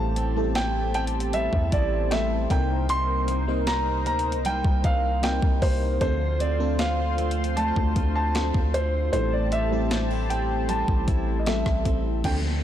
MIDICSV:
0, 0, Header, 1, 9, 480
1, 0, Start_track
1, 0, Key_signature, 0, "minor"
1, 0, Tempo, 779221
1, 1781, Time_signature, 4, 2, 24, 8
1, 7783, End_track
2, 0, Start_track
2, 0, Title_t, "Synth pluck"
2, 0, Program_c, 0, 84
2, 0, Note_on_c, 0, 87, 54
2, 211, Note_off_c, 0, 87, 0
2, 584, Note_on_c, 0, 81, 75
2, 1299, Note_on_c, 0, 79, 83
2, 1756, Note_off_c, 0, 79, 0
2, 1758, Note_off_c, 0, 81, 0
2, 3222, Note_on_c, 0, 75, 74
2, 3917, Note_off_c, 0, 75, 0
2, 3940, Note_on_c, 0, 72, 72
2, 4659, Note_on_c, 0, 74, 58
2, 5453, Note_off_c, 0, 72, 0
2, 5836, Note_off_c, 0, 74, 0
2, 6584, Note_on_c, 0, 81, 54
2, 7758, Note_off_c, 0, 81, 0
2, 7783, End_track
3, 0, Start_track
3, 0, Title_t, "Grand piano"
3, 0, Program_c, 1, 0
3, 0, Note_on_c, 1, 81, 107
3, 317, Note_off_c, 1, 81, 0
3, 343, Note_on_c, 1, 79, 109
3, 575, Note_off_c, 1, 79, 0
3, 584, Note_on_c, 1, 79, 99
3, 638, Note_off_c, 1, 79, 0
3, 824, Note_on_c, 1, 76, 101
3, 1065, Note_on_c, 1, 74, 94
3, 1070, Note_off_c, 1, 76, 0
3, 1306, Note_on_c, 1, 76, 97
3, 1310, Note_off_c, 1, 74, 0
3, 1546, Note_on_c, 1, 79, 97
3, 1551, Note_off_c, 1, 76, 0
3, 1767, Note_off_c, 1, 79, 0
3, 1785, Note_on_c, 1, 84, 119
3, 2263, Note_on_c, 1, 82, 112
3, 2278, Note_off_c, 1, 84, 0
3, 2496, Note_off_c, 1, 82, 0
3, 2505, Note_on_c, 1, 82, 103
3, 2747, Note_on_c, 1, 79, 108
3, 2751, Note_off_c, 1, 82, 0
3, 2987, Note_on_c, 1, 77, 97
3, 2992, Note_off_c, 1, 79, 0
3, 3226, Note_on_c, 1, 79, 95
3, 3231, Note_off_c, 1, 77, 0
3, 3464, Note_on_c, 1, 72, 89
3, 3471, Note_off_c, 1, 79, 0
3, 3686, Note_off_c, 1, 72, 0
3, 3704, Note_on_c, 1, 72, 101
3, 3926, Note_off_c, 1, 72, 0
3, 3944, Note_on_c, 1, 74, 93
3, 4183, Note_on_c, 1, 77, 98
3, 4190, Note_off_c, 1, 74, 0
3, 4661, Note_on_c, 1, 81, 99
3, 4676, Note_off_c, 1, 77, 0
3, 4997, Note_off_c, 1, 81, 0
3, 5024, Note_on_c, 1, 81, 95
3, 5385, Note_on_c, 1, 72, 89
3, 5393, Note_off_c, 1, 81, 0
3, 5613, Note_off_c, 1, 72, 0
3, 5622, Note_on_c, 1, 72, 98
3, 5745, Note_off_c, 1, 72, 0
3, 5746, Note_on_c, 1, 74, 84
3, 5867, Note_off_c, 1, 74, 0
3, 5867, Note_on_c, 1, 76, 103
3, 6344, Note_on_c, 1, 79, 90
3, 6359, Note_off_c, 1, 76, 0
3, 6584, Note_on_c, 1, 81, 94
3, 6590, Note_off_c, 1, 79, 0
3, 7019, Note_on_c, 1, 75, 64
3, 7062, Note_off_c, 1, 75, 0
3, 7064, Note_on_c, 1, 76, 80
3, 7278, Note_off_c, 1, 81, 0
3, 7518, Note_off_c, 1, 76, 0
3, 7545, Note_on_c, 1, 79, 96
3, 7599, Note_off_c, 1, 79, 0
3, 7783, End_track
4, 0, Start_track
4, 0, Title_t, "Analog synth pad"
4, 0, Program_c, 2, 89
4, 0, Note_on_c, 2, 67, 81
4, 0, Note_on_c, 2, 72, 74
4, 0, Note_on_c, 2, 81, 94
4, 1522, Note_off_c, 2, 67, 0
4, 1522, Note_off_c, 2, 81, 0
4, 1544, Note_on_c, 2, 63, 76
4, 1544, Note_on_c, 2, 70, 87
4, 3675, Note_off_c, 2, 72, 0
4, 3681, Note_off_c, 2, 63, 0
4, 3681, Note_off_c, 2, 70, 0
4, 3701, Note_on_c, 2, 65, 79
4, 3703, Note_on_c, 2, 84, 89
4, 3704, Note_on_c, 2, 72, 71
4, 5602, Note_off_c, 2, 65, 0
4, 5603, Note_off_c, 2, 84, 0
4, 5604, Note_off_c, 2, 72, 0
4, 5624, Note_on_c, 2, 81, 94
4, 5625, Note_on_c, 2, 72, 77
4, 5626, Note_on_c, 2, 67, 83
4, 7524, Note_off_c, 2, 72, 0
4, 7524, Note_off_c, 2, 81, 0
4, 7525, Note_off_c, 2, 67, 0
4, 7783, End_track
5, 0, Start_track
5, 0, Title_t, "FM electric piano"
5, 0, Program_c, 3, 5
5, 0, Control_c, 3, 64, 127
5, 0, Note_on_c, 3, 55, 76
5, 0, Note_on_c, 3, 57, 67
5, 0, Note_on_c, 3, 60, 69
5, 0, Note_on_c, 3, 64, 69
5, 0, Note_on_c, 3, 69, 84
5, 80, Note_off_c, 3, 55, 0
5, 80, Note_off_c, 3, 57, 0
5, 82, Note_off_c, 3, 60, 0
5, 83, Note_off_c, 3, 64, 0
5, 84, Note_off_c, 3, 69, 0
5, 219, Note_on_c, 3, 55, 71
5, 222, Note_on_c, 3, 57, 69
5, 224, Note_on_c, 3, 59, 55
5, 227, Note_on_c, 3, 64, 73
5, 230, Note_on_c, 3, 69, 79
5, 263, Note_off_c, 3, 59, 0
5, 264, Note_on_c, 3, 60, 69
5, 803, Note_off_c, 3, 55, 0
5, 805, Note_off_c, 3, 57, 0
5, 807, Note_off_c, 3, 64, 0
5, 808, Note_off_c, 3, 69, 0
5, 825, Note_off_c, 3, 60, 0
5, 1298, Note_on_c, 3, 55, 83
5, 1301, Note_on_c, 3, 57, 75
5, 1304, Note_on_c, 3, 60, 68
5, 1305, Note_on_c, 3, 64, 70
5, 1308, Note_on_c, 3, 69, 92
5, 1533, Note_off_c, 3, 55, 0
5, 1538, Note_off_c, 3, 60, 0
5, 1540, Note_on_c, 3, 55, 77
5, 1541, Note_off_c, 3, 57, 0
5, 1543, Note_off_c, 3, 64, 0
5, 1543, Note_on_c, 3, 58, 70
5, 1545, Note_off_c, 3, 69, 0
5, 1546, Note_on_c, 3, 60, 73
5, 1548, Note_on_c, 3, 63, 68
5, 1550, Control_c, 3, 64, 0
5, 1550, Note_on_c, 3, 70, 88
5, 1639, Control_c, 3, 64, 127
5, 2021, Note_off_c, 3, 55, 0
5, 2023, Note_off_c, 3, 58, 0
5, 2024, Note_off_c, 3, 60, 0
5, 2025, Note_off_c, 3, 63, 0
5, 2026, Note_off_c, 3, 70, 0
5, 2139, Note_on_c, 3, 55, 76
5, 2142, Note_on_c, 3, 58, 70
5, 2143, Note_on_c, 3, 60, 69
5, 2145, Note_on_c, 3, 63, 71
5, 2149, Note_on_c, 3, 72, 87
5, 2723, Note_off_c, 3, 55, 0
5, 2724, Note_off_c, 3, 58, 0
5, 2725, Note_off_c, 3, 60, 0
5, 2726, Note_off_c, 3, 63, 0
5, 2728, Note_off_c, 3, 72, 0
5, 3218, Note_on_c, 3, 55, 82
5, 3221, Note_on_c, 3, 58, 71
5, 3224, Note_on_c, 3, 60, 72
5, 3226, Note_on_c, 3, 63, 73
5, 3228, Note_on_c, 3, 70, 88
5, 3511, Note_off_c, 3, 55, 0
5, 3513, Note_off_c, 3, 58, 0
5, 3514, Note_off_c, 3, 60, 0
5, 3515, Note_off_c, 3, 63, 0
5, 3516, Note_off_c, 3, 70, 0
5, 3700, Note_on_c, 3, 53, 78
5, 3702, Note_on_c, 3, 57, 72
5, 3705, Note_on_c, 3, 60, 73
5, 3708, Note_on_c, 3, 50, 69
5, 3710, Control_c, 3, 64, 0
5, 3710, Note_on_c, 3, 69, 82
5, 3803, Control_c, 3, 64, 127
5, 3919, Note_off_c, 3, 53, 0
5, 3920, Note_off_c, 3, 57, 0
5, 3922, Note_off_c, 3, 60, 0
5, 3923, Note_off_c, 3, 50, 0
5, 3924, Note_off_c, 3, 69, 0
5, 4057, Note_on_c, 3, 53, 74
5, 4060, Note_on_c, 3, 57, 70
5, 4064, Note_on_c, 3, 60, 67
5, 4064, Note_on_c, 3, 62, 70
5, 4067, Note_on_c, 3, 69, 89
5, 4642, Note_off_c, 3, 53, 0
5, 4643, Note_off_c, 3, 57, 0
5, 4645, Note_off_c, 3, 60, 0
5, 4646, Note_off_c, 3, 62, 0
5, 4647, Note_off_c, 3, 69, 0
5, 5139, Note_on_c, 3, 53, 84
5, 5142, Note_on_c, 3, 57, 73
5, 5144, Note_on_c, 3, 60, 73
5, 5147, Note_on_c, 3, 62, 70
5, 5149, Note_on_c, 3, 65, 84
5, 5432, Note_off_c, 3, 53, 0
5, 5433, Note_off_c, 3, 57, 0
5, 5434, Note_off_c, 3, 60, 0
5, 5435, Note_off_c, 3, 62, 0
5, 5436, Note_off_c, 3, 65, 0
5, 5621, Note_on_c, 3, 55, 73
5, 5624, Note_on_c, 3, 57, 66
5, 5625, Note_on_c, 3, 60, 68
5, 5628, Note_on_c, 3, 64, 70
5, 5630, Control_c, 3, 64, 0
5, 5631, Note_on_c, 3, 69, 79
5, 5743, Control_c, 3, 64, 127
5, 5840, Note_off_c, 3, 55, 0
5, 5841, Note_off_c, 3, 57, 0
5, 5842, Note_off_c, 3, 60, 0
5, 5843, Note_off_c, 3, 64, 0
5, 5845, Note_off_c, 3, 69, 0
5, 5983, Note_on_c, 3, 55, 76
5, 5984, Note_on_c, 3, 57, 71
5, 5987, Note_on_c, 3, 60, 72
5, 5989, Note_on_c, 3, 64, 70
5, 5993, Note_on_c, 3, 69, 85
5, 6565, Note_off_c, 3, 55, 0
5, 6565, Note_off_c, 3, 57, 0
5, 6567, Note_off_c, 3, 60, 0
5, 6568, Note_off_c, 3, 64, 0
5, 6570, Note_off_c, 3, 69, 0
5, 7061, Note_on_c, 3, 55, 80
5, 7064, Note_on_c, 3, 57, 73
5, 7067, Note_on_c, 3, 60, 71
5, 7069, Note_on_c, 3, 64, 72
5, 7071, Note_on_c, 3, 69, 92
5, 7352, Note_off_c, 3, 55, 0
5, 7354, Note_off_c, 3, 57, 0
5, 7355, Note_off_c, 3, 60, 0
5, 7356, Note_off_c, 3, 64, 0
5, 7358, Note_off_c, 3, 69, 0
5, 7542, Note_on_c, 3, 53, 72
5, 7545, Note_on_c, 3, 60, 62
5, 7547, Note_on_c, 3, 62, 65
5, 7550, Control_c, 3, 64, 0
5, 7550, Note_on_c, 3, 52, 64
5, 7552, Note_on_c, 3, 69, 73
5, 7643, Control_c, 3, 64, 127
5, 7783, Note_off_c, 3, 52, 0
5, 7783, Note_off_c, 3, 53, 0
5, 7783, Note_off_c, 3, 60, 0
5, 7783, Note_off_c, 3, 62, 0
5, 7783, Note_off_c, 3, 69, 0
5, 7783, End_track
6, 0, Start_track
6, 0, Title_t, "Steel-string acoustic guitar"
6, 0, Program_c, 4, 25
6, 0, Note_on_c, 4, 45, 81
6, 103, Note_on_c, 4, 60, 65
6, 342, Note_on_c, 4, 64, 67
6, 580, Note_off_c, 4, 60, 0
6, 583, Note_on_c, 4, 60, 66
6, 822, Note_on_c, 4, 55, 75
6, 1055, Note_off_c, 4, 64, 0
6, 1062, Note_on_c, 4, 64, 68
6, 1301, Note_off_c, 4, 55, 0
6, 1303, Note_on_c, 4, 55, 62
6, 1543, Note_on_c, 4, 48, 80
6, 1590, Note_off_c, 4, 45, 0
6, 1590, Note_off_c, 4, 64, 0
6, 1774, Note_off_c, 4, 48, 0
6, 1781, Note_on_c, 4, 48, 81
6, 2021, Note_off_c, 4, 60, 0
6, 2023, Note_on_c, 4, 58, 63
6, 2264, Note_on_c, 4, 63, 70
6, 2495, Note_off_c, 4, 58, 0
6, 2503, Note_on_c, 4, 58, 67
6, 2741, Note_off_c, 4, 55, 0
6, 2743, Note_on_c, 4, 55, 77
6, 2976, Note_off_c, 4, 63, 0
6, 2983, Note_on_c, 4, 63, 71
6, 3216, Note_off_c, 4, 55, 0
6, 3223, Note_on_c, 4, 55, 61
6, 3455, Note_off_c, 4, 58, 0
6, 3463, Note_on_c, 4, 58, 61
6, 3701, Note_off_c, 4, 48, 0
6, 3703, Note_on_c, 4, 50, 80
6, 3750, Note_off_c, 4, 55, 0
6, 3750, Note_off_c, 4, 58, 0
6, 3750, Note_off_c, 4, 63, 0
6, 3941, Note_on_c, 4, 60, 65
6, 4183, Note_on_c, 4, 65, 65
6, 4421, Note_off_c, 4, 60, 0
6, 4423, Note_on_c, 4, 60, 65
6, 4664, Note_on_c, 4, 57, 78
6, 4896, Note_off_c, 4, 65, 0
6, 4903, Note_on_c, 4, 65, 73
6, 5142, Note_off_c, 4, 57, 0
6, 5144, Note_on_c, 4, 57, 66
6, 5382, Note_off_c, 4, 60, 0
6, 5384, Note_on_c, 4, 60, 60
6, 5622, Note_off_c, 4, 50, 0
6, 5625, Note_on_c, 4, 45, 80
6, 5671, Note_off_c, 4, 65, 0
6, 5861, Note_off_c, 4, 60, 0
6, 5863, Note_on_c, 4, 60, 68
6, 6104, Note_on_c, 4, 62, 63
6, 6225, Note_off_c, 4, 62, 0
6, 6225, Note_on_c, 4, 64, 56
6, 6342, Note_off_c, 4, 60, 0
6, 6344, Note_on_c, 4, 60, 67
6, 6582, Note_off_c, 4, 57, 0
6, 6584, Note_on_c, 4, 55, 74
6, 6816, Note_off_c, 4, 64, 0
6, 6824, Note_on_c, 4, 64, 71
6, 7056, Note_off_c, 4, 55, 0
6, 7063, Note_on_c, 4, 55, 64
6, 7301, Note_off_c, 4, 60, 0
6, 7304, Note_on_c, 4, 60, 62
6, 7543, Note_off_c, 4, 45, 0
6, 7544, Note_on_c, 4, 50, 81
6, 7591, Note_off_c, 4, 55, 0
6, 7783, Note_off_c, 4, 50, 0
6, 7783, Note_off_c, 4, 60, 0
6, 7783, Note_off_c, 4, 64, 0
6, 7783, End_track
7, 0, Start_track
7, 0, Title_t, "808-style bass"
7, 0, Program_c, 5, 38
7, 0, Note_on_c, 5, 33, 111
7, 917, Note_off_c, 5, 33, 0
7, 942, Note_on_c, 5, 40, 100
7, 1057, Note_off_c, 5, 40, 0
7, 1064, Note_on_c, 5, 33, 109
7, 1523, Note_off_c, 5, 33, 0
7, 1543, Note_on_c, 5, 36, 104
7, 2505, Note_on_c, 5, 38, 98
7, 2514, Note_off_c, 5, 36, 0
7, 2685, Note_on_c, 5, 36, 100
7, 2694, Note_off_c, 5, 38, 0
7, 2854, Note_off_c, 5, 36, 0
7, 2863, Note_on_c, 5, 36, 100
7, 2978, Note_off_c, 5, 36, 0
7, 2985, Note_on_c, 5, 36, 97
7, 3329, Note_off_c, 5, 36, 0
7, 3343, Note_on_c, 5, 36, 100
7, 3458, Note_off_c, 5, 36, 0
7, 3464, Note_on_c, 5, 36, 98
7, 3693, Note_off_c, 5, 36, 0
7, 3704, Note_on_c, 5, 38, 120
7, 4758, Note_off_c, 5, 38, 0
7, 4784, Note_on_c, 5, 38, 97
7, 4898, Note_off_c, 5, 38, 0
7, 4906, Note_on_c, 5, 38, 100
7, 5249, Note_off_c, 5, 38, 0
7, 5265, Note_on_c, 5, 38, 101
7, 5609, Note_off_c, 5, 38, 0
7, 5626, Note_on_c, 5, 33, 117
7, 6679, Note_off_c, 5, 33, 0
7, 6705, Note_on_c, 5, 33, 103
7, 6818, Note_off_c, 5, 33, 0
7, 6826, Note_on_c, 5, 33, 108
7, 7170, Note_off_c, 5, 33, 0
7, 7185, Note_on_c, 5, 33, 99
7, 7298, Note_off_c, 5, 33, 0
7, 7304, Note_on_c, 5, 33, 105
7, 7533, Note_off_c, 5, 33, 0
7, 7542, Note_on_c, 5, 38, 118
7, 7783, Note_off_c, 5, 38, 0
7, 7783, End_track
8, 0, Start_track
8, 0, Title_t, "Downlifter"
8, 0, Program_c, 6, 103
8, 7543, Note_on_c, 6, 60, 81
8, 7783, Note_off_c, 6, 60, 0
8, 7783, End_track
9, 0, Start_track
9, 0, Title_t, "Drums"
9, 101, Note_on_c, 9, 42, 61
9, 162, Note_off_c, 9, 42, 0
9, 340, Note_on_c, 9, 42, 68
9, 342, Note_on_c, 9, 38, 111
9, 402, Note_off_c, 9, 42, 0
9, 403, Note_off_c, 9, 38, 0
9, 581, Note_on_c, 9, 42, 55
9, 643, Note_off_c, 9, 42, 0
9, 662, Note_on_c, 9, 42, 56
9, 723, Note_off_c, 9, 42, 0
9, 741, Note_on_c, 9, 42, 58
9, 803, Note_off_c, 9, 42, 0
9, 820, Note_on_c, 9, 42, 59
9, 882, Note_off_c, 9, 42, 0
9, 941, Note_on_c, 9, 36, 84
9, 1002, Note_off_c, 9, 36, 0
9, 1061, Note_on_c, 9, 42, 62
9, 1062, Note_on_c, 9, 36, 103
9, 1122, Note_off_c, 9, 42, 0
9, 1124, Note_off_c, 9, 36, 0
9, 1301, Note_on_c, 9, 42, 62
9, 1306, Note_on_c, 9, 38, 101
9, 1363, Note_off_c, 9, 42, 0
9, 1367, Note_off_c, 9, 38, 0
9, 1542, Note_on_c, 9, 36, 108
9, 1544, Note_on_c, 9, 42, 69
9, 1603, Note_off_c, 9, 36, 0
9, 1606, Note_off_c, 9, 42, 0
9, 1781, Note_on_c, 9, 42, 74
9, 1843, Note_off_c, 9, 42, 0
9, 2020, Note_on_c, 9, 42, 63
9, 2082, Note_off_c, 9, 42, 0
9, 2260, Note_on_c, 9, 42, 66
9, 2262, Note_on_c, 9, 38, 118
9, 2322, Note_off_c, 9, 42, 0
9, 2323, Note_off_c, 9, 38, 0
9, 2501, Note_on_c, 9, 42, 54
9, 2563, Note_off_c, 9, 42, 0
9, 2582, Note_on_c, 9, 42, 53
9, 2643, Note_off_c, 9, 42, 0
9, 2662, Note_on_c, 9, 42, 57
9, 2724, Note_off_c, 9, 42, 0
9, 2741, Note_on_c, 9, 42, 61
9, 2802, Note_off_c, 9, 42, 0
9, 2861, Note_on_c, 9, 36, 89
9, 2923, Note_off_c, 9, 36, 0
9, 2981, Note_on_c, 9, 42, 64
9, 2983, Note_on_c, 9, 36, 101
9, 3043, Note_off_c, 9, 42, 0
9, 3044, Note_off_c, 9, 36, 0
9, 3222, Note_on_c, 9, 42, 62
9, 3226, Note_on_c, 9, 38, 108
9, 3283, Note_off_c, 9, 42, 0
9, 3288, Note_off_c, 9, 38, 0
9, 3342, Note_on_c, 9, 36, 95
9, 3403, Note_off_c, 9, 36, 0
9, 3462, Note_on_c, 9, 36, 95
9, 3464, Note_on_c, 9, 46, 69
9, 3524, Note_off_c, 9, 36, 0
9, 3525, Note_off_c, 9, 46, 0
9, 3702, Note_on_c, 9, 36, 114
9, 3703, Note_on_c, 9, 42, 75
9, 3764, Note_off_c, 9, 36, 0
9, 3765, Note_off_c, 9, 42, 0
9, 3944, Note_on_c, 9, 42, 65
9, 4006, Note_off_c, 9, 42, 0
9, 4182, Note_on_c, 9, 42, 67
9, 4184, Note_on_c, 9, 38, 118
9, 4244, Note_off_c, 9, 42, 0
9, 4246, Note_off_c, 9, 38, 0
9, 4424, Note_on_c, 9, 42, 57
9, 4486, Note_off_c, 9, 42, 0
9, 4504, Note_on_c, 9, 42, 53
9, 4566, Note_off_c, 9, 42, 0
9, 4583, Note_on_c, 9, 42, 57
9, 4645, Note_off_c, 9, 42, 0
9, 4663, Note_on_c, 9, 42, 59
9, 4724, Note_off_c, 9, 42, 0
9, 4783, Note_on_c, 9, 36, 94
9, 4844, Note_off_c, 9, 36, 0
9, 4903, Note_on_c, 9, 42, 62
9, 4904, Note_on_c, 9, 36, 99
9, 4965, Note_off_c, 9, 42, 0
9, 4966, Note_off_c, 9, 36, 0
9, 5143, Note_on_c, 9, 42, 64
9, 5147, Note_on_c, 9, 38, 108
9, 5204, Note_off_c, 9, 42, 0
9, 5209, Note_off_c, 9, 38, 0
9, 5263, Note_on_c, 9, 36, 95
9, 5325, Note_off_c, 9, 36, 0
9, 5386, Note_on_c, 9, 42, 68
9, 5447, Note_off_c, 9, 42, 0
9, 5624, Note_on_c, 9, 42, 71
9, 5686, Note_off_c, 9, 42, 0
9, 5864, Note_on_c, 9, 42, 64
9, 5925, Note_off_c, 9, 42, 0
9, 6104, Note_on_c, 9, 42, 65
9, 6106, Note_on_c, 9, 38, 113
9, 6166, Note_off_c, 9, 42, 0
9, 6167, Note_off_c, 9, 38, 0
9, 6347, Note_on_c, 9, 42, 64
9, 6409, Note_off_c, 9, 42, 0
9, 6584, Note_on_c, 9, 42, 60
9, 6646, Note_off_c, 9, 42, 0
9, 6703, Note_on_c, 9, 36, 91
9, 6765, Note_off_c, 9, 36, 0
9, 6824, Note_on_c, 9, 36, 100
9, 6824, Note_on_c, 9, 42, 63
9, 6885, Note_off_c, 9, 42, 0
9, 6886, Note_off_c, 9, 36, 0
9, 7062, Note_on_c, 9, 42, 63
9, 7066, Note_on_c, 9, 38, 107
9, 7124, Note_off_c, 9, 42, 0
9, 7128, Note_off_c, 9, 38, 0
9, 7182, Note_on_c, 9, 36, 94
9, 7183, Note_on_c, 9, 37, 91
9, 7244, Note_off_c, 9, 36, 0
9, 7245, Note_off_c, 9, 37, 0
9, 7302, Note_on_c, 9, 36, 93
9, 7302, Note_on_c, 9, 42, 66
9, 7364, Note_off_c, 9, 36, 0
9, 7364, Note_off_c, 9, 42, 0
9, 7541, Note_on_c, 9, 36, 106
9, 7541, Note_on_c, 9, 42, 67
9, 7541, Note_on_c, 9, 49, 88
9, 7603, Note_off_c, 9, 36, 0
9, 7603, Note_off_c, 9, 42, 0
9, 7603, Note_off_c, 9, 49, 0
9, 7783, End_track
0, 0, End_of_file